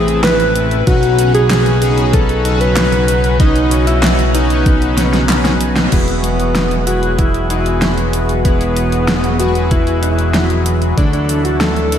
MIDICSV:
0, 0, Header, 1, 7, 480
1, 0, Start_track
1, 0, Key_signature, 4, "major"
1, 0, Tempo, 631579
1, 662, Time_signature, 4, 2, 24, 8
1, 9109, End_track
2, 0, Start_track
2, 0, Title_t, "Synth bell"
2, 0, Program_c, 0, 98
2, 0, Note_on_c, 0, 68, 104
2, 151, Note_off_c, 0, 68, 0
2, 180, Note_on_c, 0, 71, 106
2, 516, Note_off_c, 0, 71, 0
2, 662, Note_on_c, 0, 66, 100
2, 997, Note_off_c, 0, 66, 0
2, 1023, Note_on_c, 0, 68, 102
2, 1592, Note_off_c, 0, 68, 0
2, 1622, Note_on_c, 0, 69, 100
2, 1957, Note_off_c, 0, 69, 0
2, 1982, Note_on_c, 0, 71, 102
2, 2552, Note_off_c, 0, 71, 0
2, 2582, Note_on_c, 0, 63, 100
2, 2917, Note_off_c, 0, 63, 0
2, 2942, Note_on_c, 0, 64, 93
2, 3277, Note_off_c, 0, 64, 0
2, 3302, Note_on_c, 0, 63, 87
2, 3992, Note_off_c, 0, 63, 0
2, 9109, End_track
3, 0, Start_track
3, 0, Title_t, "Analog polysynth"
3, 0, Program_c, 1, 90
3, 0, Note_on_c, 1, 57, 94
3, 0, Note_on_c, 1, 60, 97
3, 0, Note_on_c, 1, 64, 92
3, 0, Note_on_c, 1, 71, 115
3, 633, Note_off_c, 1, 57, 0
3, 633, Note_off_c, 1, 60, 0
3, 633, Note_off_c, 1, 64, 0
3, 633, Note_off_c, 1, 71, 0
3, 662, Note_on_c, 1, 61, 86
3, 662, Note_on_c, 1, 63, 81
3, 662, Note_on_c, 1, 66, 79
3, 662, Note_on_c, 1, 71, 97
3, 1353, Note_off_c, 1, 61, 0
3, 1353, Note_off_c, 1, 63, 0
3, 1353, Note_off_c, 1, 66, 0
3, 1353, Note_off_c, 1, 71, 0
3, 1381, Note_on_c, 1, 66, 88
3, 1382, Note_on_c, 1, 61, 98
3, 1382, Note_on_c, 1, 63, 85
3, 1382, Note_on_c, 1, 71, 109
3, 1833, Note_off_c, 1, 61, 0
3, 1833, Note_off_c, 1, 63, 0
3, 1833, Note_off_c, 1, 66, 0
3, 1833, Note_off_c, 1, 71, 0
3, 1861, Note_on_c, 1, 61, 99
3, 1861, Note_on_c, 1, 63, 90
3, 1861, Note_on_c, 1, 66, 91
3, 1861, Note_on_c, 1, 71, 107
3, 2553, Note_off_c, 1, 61, 0
3, 2553, Note_off_c, 1, 63, 0
3, 2553, Note_off_c, 1, 66, 0
3, 2553, Note_off_c, 1, 71, 0
3, 2581, Note_on_c, 1, 71, 96
3, 2582, Note_on_c, 1, 61, 88
3, 2582, Note_on_c, 1, 66, 82
3, 2582, Note_on_c, 1, 75, 83
3, 3273, Note_off_c, 1, 61, 0
3, 3273, Note_off_c, 1, 66, 0
3, 3273, Note_off_c, 1, 71, 0
3, 3273, Note_off_c, 1, 75, 0
3, 3301, Note_on_c, 1, 61, 100
3, 3302, Note_on_c, 1, 63, 89
3, 3302, Note_on_c, 1, 66, 90
3, 3302, Note_on_c, 1, 71, 110
3, 4473, Note_off_c, 1, 61, 0
3, 4473, Note_off_c, 1, 63, 0
3, 4473, Note_off_c, 1, 66, 0
3, 4473, Note_off_c, 1, 71, 0
3, 4501, Note_on_c, 1, 64, 85
3, 4501, Note_on_c, 1, 68, 77
3, 4502, Note_on_c, 1, 66, 75
3, 4502, Note_on_c, 1, 71, 94
3, 5193, Note_off_c, 1, 64, 0
3, 5193, Note_off_c, 1, 66, 0
3, 5193, Note_off_c, 1, 68, 0
3, 5193, Note_off_c, 1, 71, 0
3, 5221, Note_on_c, 1, 68, 84
3, 5222, Note_on_c, 1, 64, 94
3, 5222, Note_on_c, 1, 66, 85
3, 5222, Note_on_c, 1, 71, 101
3, 5673, Note_off_c, 1, 64, 0
3, 5673, Note_off_c, 1, 66, 0
3, 5673, Note_off_c, 1, 68, 0
3, 5673, Note_off_c, 1, 71, 0
3, 5701, Note_on_c, 1, 68, 85
3, 5702, Note_on_c, 1, 64, 92
3, 5702, Note_on_c, 1, 66, 84
3, 5702, Note_on_c, 1, 71, 106
3, 6393, Note_off_c, 1, 64, 0
3, 6393, Note_off_c, 1, 66, 0
3, 6393, Note_off_c, 1, 68, 0
3, 6393, Note_off_c, 1, 71, 0
3, 6422, Note_on_c, 1, 64, 88
3, 6422, Note_on_c, 1, 66, 78
3, 6422, Note_on_c, 1, 68, 81
3, 6422, Note_on_c, 1, 71, 92
3, 7113, Note_off_c, 1, 64, 0
3, 7113, Note_off_c, 1, 66, 0
3, 7113, Note_off_c, 1, 68, 0
3, 7113, Note_off_c, 1, 71, 0
3, 7142, Note_on_c, 1, 64, 98
3, 7142, Note_on_c, 1, 66, 92
3, 7142, Note_on_c, 1, 68, 91
3, 7142, Note_on_c, 1, 71, 109
3, 8313, Note_off_c, 1, 64, 0
3, 8313, Note_off_c, 1, 66, 0
3, 8313, Note_off_c, 1, 68, 0
3, 8313, Note_off_c, 1, 71, 0
3, 8341, Note_on_c, 1, 62, 84
3, 8341, Note_on_c, 1, 64, 79
3, 8341, Note_on_c, 1, 69, 94
3, 8342, Note_on_c, 1, 66, 79
3, 9033, Note_off_c, 1, 62, 0
3, 9033, Note_off_c, 1, 64, 0
3, 9033, Note_off_c, 1, 66, 0
3, 9033, Note_off_c, 1, 69, 0
3, 9061, Note_on_c, 1, 62, 91
3, 9061, Note_on_c, 1, 64, 85
3, 9061, Note_on_c, 1, 66, 85
3, 9061, Note_on_c, 1, 69, 99
3, 9109, Note_off_c, 1, 62, 0
3, 9109, Note_off_c, 1, 64, 0
3, 9109, Note_off_c, 1, 66, 0
3, 9109, Note_off_c, 1, 69, 0
3, 9109, End_track
4, 0, Start_track
4, 0, Title_t, "Alto saxophone"
4, 0, Program_c, 2, 65
4, 0, Note_on_c, 2, 68, 115
4, 153, Note_off_c, 2, 68, 0
4, 183, Note_on_c, 2, 71, 108
4, 517, Note_off_c, 2, 71, 0
4, 663, Note_on_c, 2, 66, 109
4, 997, Note_off_c, 2, 66, 0
4, 1023, Note_on_c, 2, 68, 111
4, 1623, Note_on_c, 2, 69, 112
4, 1634, Note_off_c, 2, 68, 0
4, 1983, Note_on_c, 2, 71, 113
4, 1994, Note_off_c, 2, 69, 0
4, 2578, Note_off_c, 2, 71, 0
4, 2583, Note_on_c, 2, 63, 102
4, 2917, Note_off_c, 2, 63, 0
4, 2943, Note_on_c, 2, 64, 98
4, 3303, Note_on_c, 2, 63, 95
4, 3315, Note_off_c, 2, 64, 0
4, 4023, Note_off_c, 2, 63, 0
4, 4506, Note_on_c, 2, 59, 96
4, 5194, Note_off_c, 2, 59, 0
4, 5221, Note_on_c, 2, 66, 105
4, 5461, Note_on_c, 2, 64, 107
4, 5473, Note_off_c, 2, 66, 0
4, 5698, Note_off_c, 2, 64, 0
4, 5703, Note_on_c, 2, 64, 92
4, 6152, Note_off_c, 2, 64, 0
4, 6425, Note_on_c, 2, 59, 97
4, 7113, Note_off_c, 2, 59, 0
4, 7142, Note_on_c, 2, 66, 107
4, 7382, Note_on_c, 2, 64, 105
4, 7393, Note_off_c, 2, 66, 0
4, 7618, Note_off_c, 2, 64, 0
4, 7622, Note_on_c, 2, 64, 92
4, 8072, Note_off_c, 2, 64, 0
4, 8341, Note_on_c, 2, 62, 94
4, 8453, Note_off_c, 2, 62, 0
4, 8460, Note_on_c, 2, 62, 86
4, 8684, Note_off_c, 2, 62, 0
4, 8702, Note_on_c, 2, 66, 97
4, 8821, Note_on_c, 2, 69, 110
4, 8833, Note_off_c, 2, 66, 0
4, 9109, Note_off_c, 2, 69, 0
4, 9109, End_track
5, 0, Start_track
5, 0, Title_t, "Analog synth pad"
5, 0, Program_c, 3, 89
5, 0, Note_on_c, 3, 48, 81
5, 0, Note_on_c, 3, 52, 81
5, 0, Note_on_c, 3, 57, 74
5, 0, Note_on_c, 3, 64, 89
5, 631, Note_off_c, 3, 52, 0
5, 631, Note_off_c, 3, 57, 0
5, 632, Note_off_c, 3, 48, 0
5, 632, Note_off_c, 3, 64, 0
5, 662, Note_on_c, 3, 49, 83
5, 662, Note_on_c, 3, 66, 91
5, 663, Note_on_c, 3, 54, 76
5, 663, Note_on_c, 3, 61, 75
5, 4472, Note_off_c, 3, 49, 0
5, 4472, Note_off_c, 3, 54, 0
5, 4472, Note_off_c, 3, 61, 0
5, 4472, Note_off_c, 3, 66, 0
5, 4500, Note_on_c, 3, 52, 80
5, 4500, Note_on_c, 3, 54, 73
5, 4500, Note_on_c, 3, 66, 85
5, 4501, Note_on_c, 3, 56, 73
5, 4501, Note_on_c, 3, 59, 72
5, 8311, Note_off_c, 3, 56, 0
5, 8311, Note_off_c, 3, 59, 0
5, 8311, Note_off_c, 3, 66, 0
5, 8339, Note_on_c, 3, 50, 80
5, 8339, Note_on_c, 3, 57, 73
5, 8339, Note_on_c, 3, 64, 90
5, 9109, Note_off_c, 3, 50, 0
5, 9109, Note_off_c, 3, 52, 0
5, 9109, Note_off_c, 3, 54, 0
5, 9109, Note_off_c, 3, 57, 0
5, 9109, Note_off_c, 3, 64, 0
5, 9109, End_track
6, 0, Start_track
6, 0, Title_t, "Analog synth bass"
6, 0, Program_c, 4, 38
6, 0, Note_on_c, 4, 33, 88
6, 638, Note_off_c, 4, 33, 0
6, 663, Note_on_c, 4, 35, 87
6, 4478, Note_off_c, 4, 35, 0
6, 4502, Note_on_c, 4, 28, 85
6, 8318, Note_off_c, 4, 28, 0
6, 8342, Note_on_c, 4, 38, 86
6, 9109, Note_off_c, 4, 38, 0
6, 9109, End_track
7, 0, Start_track
7, 0, Title_t, "Drums"
7, 61, Note_on_c, 9, 42, 39
7, 137, Note_off_c, 9, 42, 0
7, 181, Note_on_c, 9, 38, 115
7, 181, Note_on_c, 9, 39, 91
7, 181, Note_on_c, 9, 42, 61
7, 257, Note_off_c, 9, 38, 0
7, 257, Note_off_c, 9, 39, 0
7, 257, Note_off_c, 9, 42, 0
7, 302, Note_on_c, 9, 42, 38
7, 378, Note_off_c, 9, 42, 0
7, 422, Note_on_c, 9, 42, 92
7, 498, Note_off_c, 9, 42, 0
7, 542, Note_on_c, 9, 42, 38
7, 618, Note_off_c, 9, 42, 0
7, 662, Note_on_c, 9, 42, 66
7, 663, Note_on_c, 9, 36, 112
7, 738, Note_off_c, 9, 42, 0
7, 739, Note_off_c, 9, 36, 0
7, 782, Note_on_c, 9, 42, 39
7, 858, Note_off_c, 9, 42, 0
7, 901, Note_on_c, 9, 42, 92
7, 977, Note_off_c, 9, 42, 0
7, 1023, Note_on_c, 9, 42, 41
7, 1099, Note_off_c, 9, 42, 0
7, 1142, Note_on_c, 9, 38, 115
7, 1142, Note_on_c, 9, 39, 100
7, 1142, Note_on_c, 9, 42, 66
7, 1218, Note_off_c, 9, 38, 0
7, 1218, Note_off_c, 9, 39, 0
7, 1218, Note_off_c, 9, 42, 0
7, 1262, Note_on_c, 9, 42, 37
7, 1338, Note_off_c, 9, 42, 0
7, 1381, Note_on_c, 9, 42, 89
7, 1457, Note_off_c, 9, 42, 0
7, 1502, Note_on_c, 9, 42, 39
7, 1578, Note_off_c, 9, 42, 0
7, 1622, Note_on_c, 9, 42, 66
7, 1623, Note_on_c, 9, 36, 113
7, 1698, Note_off_c, 9, 42, 0
7, 1699, Note_off_c, 9, 36, 0
7, 1742, Note_on_c, 9, 42, 38
7, 1818, Note_off_c, 9, 42, 0
7, 1863, Note_on_c, 9, 42, 92
7, 1939, Note_off_c, 9, 42, 0
7, 1982, Note_on_c, 9, 42, 39
7, 2058, Note_off_c, 9, 42, 0
7, 2102, Note_on_c, 9, 38, 110
7, 2102, Note_on_c, 9, 39, 100
7, 2102, Note_on_c, 9, 42, 65
7, 2178, Note_off_c, 9, 38, 0
7, 2178, Note_off_c, 9, 39, 0
7, 2178, Note_off_c, 9, 42, 0
7, 2222, Note_on_c, 9, 42, 39
7, 2298, Note_off_c, 9, 42, 0
7, 2343, Note_on_c, 9, 42, 93
7, 2419, Note_off_c, 9, 42, 0
7, 2462, Note_on_c, 9, 42, 40
7, 2538, Note_off_c, 9, 42, 0
7, 2582, Note_on_c, 9, 36, 116
7, 2583, Note_on_c, 9, 42, 67
7, 2658, Note_off_c, 9, 36, 0
7, 2659, Note_off_c, 9, 42, 0
7, 2702, Note_on_c, 9, 42, 41
7, 2778, Note_off_c, 9, 42, 0
7, 2822, Note_on_c, 9, 42, 93
7, 2898, Note_off_c, 9, 42, 0
7, 2943, Note_on_c, 9, 42, 43
7, 3019, Note_off_c, 9, 42, 0
7, 3063, Note_on_c, 9, 38, 119
7, 3063, Note_on_c, 9, 39, 106
7, 3063, Note_on_c, 9, 42, 68
7, 3139, Note_off_c, 9, 38, 0
7, 3139, Note_off_c, 9, 39, 0
7, 3139, Note_off_c, 9, 42, 0
7, 3183, Note_on_c, 9, 42, 38
7, 3259, Note_off_c, 9, 42, 0
7, 3303, Note_on_c, 9, 42, 96
7, 3379, Note_off_c, 9, 42, 0
7, 3423, Note_on_c, 9, 42, 41
7, 3499, Note_off_c, 9, 42, 0
7, 3542, Note_on_c, 9, 36, 120
7, 3542, Note_on_c, 9, 42, 68
7, 3618, Note_off_c, 9, 36, 0
7, 3618, Note_off_c, 9, 42, 0
7, 3662, Note_on_c, 9, 42, 40
7, 3738, Note_off_c, 9, 42, 0
7, 3781, Note_on_c, 9, 38, 64
7, 3781, Note_on_c, 9, 42, 96
7, 3857, Note_off_c, 9, 38, 0
7, 3857, Note_off_c, 9, 42, 0
7, 3902, Note_on_c, 9, 38, 59
7, 3902, Note_on_c, 9, 42, 40
7, 3978, Note_off_c, 9, 38, 0
7, 3978, Note_off_c, 9, 42, 0
7, 4021, Note_on_c, 9, 38, 76
7, 4021, Note_on_c, 9, 39, 102
7, 4021, Note_on_c, 9, 42, 67
7, 4097, Note_off_c, 9, 38, 0
7, 4097, Note_off_c, 9, 39, 0
7, 4097, Note_off_c, 9, 42, 0
7, 4141, Note_on_c, 9, 38, 73
7, 4141, Note_on_c, 9, 42, 41
7, 4217, Note_off_c, 9, 38, 0
7, 4217, Note_off_c, 9, 42, 0
7, 4260, Note_on_c, 9, 42, 97
7, 4336, Note_off_c, 9, 42, 0
7, 4380, Note_on_c, 9, 38, 88
7, 4380, Note_on_c, 9, 42, 41
7, 4456, Note_off_c, 9, 38, 0
7, 4456, Note_off_c, 9, 42, 0
7, 4500, Note_on_c, 9, 42, 65
7, 4500, Note_on_c, 9, 49, 88
7, 4502, Note_on_c, 9, 36, 115
7, 4576, Note_off_c, 9, 42, 0
7, 4576, Note_off_c, 9, 49, 0
7, 4578, Note_off_c, 9, 36, 0
7, 4620, Note_on_c, 9, 42, 40
7, 4696, Note_off_c, 9, 42, 0
7, 4741, Note_on_c, 9, 42, 94
7, 4817, Note_off_c, 9, 42, 0
7, 4861, Note_on_c, 9, 42, 41
7, 4937, Note_off_c, 9, 42, 0
7, 4981, Note_on_c, 9, 38, 118
7, 4981, Note_on_c, 9, 42, 67
7, 5057, Note_off_c, 9, 38, 0
7, 5057, Note_off_c, 9, 42, 0
7, 5101, Note_on_c, 9, 42, 38
7, 5177, Note_off_c, 9, 42, 0
7, 5221, Note_on_c, 9, 42, 95
7, 5297, Note_off_c, 9, 42, 0
7, 5341, Note_on_c, 9, 42, 39
7, 5417, Note_off_c, 9, 42, 0
7, 5461, Note_on_c, 9, 42, 66
7, 5462, Note_on_c, 9, 36, 115
7, 5537, Note_off_c, 9, 42, 0
7, 5538, Note_off_c, 9, 36, 0
7, 5582, Note_on_c, 9, 42, 38
7, 5658, Note_off_c, 9, 42, 0
7, 5701, Note_on_c, 9, 42, 95
7, 5777, Note_off_c, 9, 42, 0
7, 5821, Note_on_c, 9, 42, 40
7, 5897, Note_off_c, 9, 42, 0
7, 5941, Note_on_c, 9, 38, 114
7, 5941, Note_on_c, 9, 42, 66
7, 6017, Note_off_c, 9, 38, 0
7, 6017, Note_off_c, 9, 42, 0
7, 6062, Note_on_c, 9, 42, 39
7, 6138, Note_off_c, 9, 42, 0
7, 6182, Note_on_c, 9, 42, 97
7, 6258, Note_off_c, 9, 42, 0
7, 6302, Note_on_c, 9, 42, 39
7, 6378, Note_off_c, 9, 42, 0
7, 6422, Note_on_c, 9, 36, 120
7, 6422, Note_on_c, 9, 42, 66
7, 6498, Note_off_c, 9, 36, 0
7, 6498, Note_off_c, 9, 42, 0
7, 6542, Note_on_c, 9, 42, 40
7, 6618, Note_off_c, 9, 42, 0
7, 6661, Note_on_c, 9, 42, 94
7, 6737, Note_off_c, 9, 42, 0
7, 6782, Note_on_c, 9, 42, 41
7, 6858, Note_off_c, 9, 42, 0
7, 6902, Note_on_c, 9, 38, 120
7, 6902, Note_on_c, 9, 42, 66
7, 6978, Note_off_c, 9, 38, 0
7, 6978, Note_off_c, 9, 42, 0
7, 7022, Note_on_c, 9, 42, 40
7, 7098, Note_off_c, 9, 42, 0
7, 7141, Note_on_c, 9, 42, 94
7, 7217, Note_off_c, 9, 42, 0
7, 7261, Note_on_c, 9, 42, 40
7, 7337, Note_off_c, 9, 42, 0
7, 7380, Note_on_c, 9, 42, 68
7, 7382, Note_on_c, 9, 36, 118
7, 7456, Note_off_c, 9, 42, 0
7, 7458, Note_off_c, 9, 36, 0
7, 7501, Note_on_c, 9, 42, 39
7, 7577, Note_off_c, 9, 42, 0
7, 7620, Note_on_c, 9, 42, 96
7, 7696, Note_off_c, 9, 42, 0
7, 7741, Note_on_c, 9, 42, 40
7, 7817, Note_off_c, 9, 42, 0
7, 7860, Note_on_c, 9, 38, 118
7, 7860, Note_on_c, 9, 42, 66
7, 7936, Note_off_c, 9, 38, 0
7, 7936, Note_off_c, 9, 42, 0
7, 7980, Note_on_c, 9, 42, 42
7, 8056, Note_off_c, 9, 42, 0
7, 8100, Note_on_c, 9, 42, 96
7, 8176, Note_off_c, 9, 42, 0
7, 8221, Note_on_c, 9, 42, 39
7, 8297, Note_off_c, 9, 42, 0
7, 8342, Note_on_c, 9, 36, 116
7, 8342, Note_on_c, 9, 42, 64
7, 8418, Note_off_c, 9, 36, 0
7, 8418, Note_off_c, 9, 42, 0
7, 8462, Note_on_c, 9, 42, 39
7, 8538, Note_off_c, 9, 42, 0
7, 8582, Note_on_c, 9, 42, 89
7, 8658, Note_off_c, 9, 42, 0
7, 8701, Note_on_c, 9, 42, 40
7, 8777, Note_off_c, 9, 42, 0
7, 8821, Note_on_c, 9, 38, 120
7, 8821, Note_on_c, 9, 42, 65
7, 8897, Note_off_c, 9, 38, 0
7, 8897, Note_off_c, 9, 42, 0
7, 8941, Note_on_c, 9, 42, 38
7, 9017, Note_off_c, 9, 42, 0
7, 9061, Note_on_c, 9, 42, 92
7, 9109, Note_off_c, 9, 42, 0
7, 9109, End_track
0, 0, End_of_file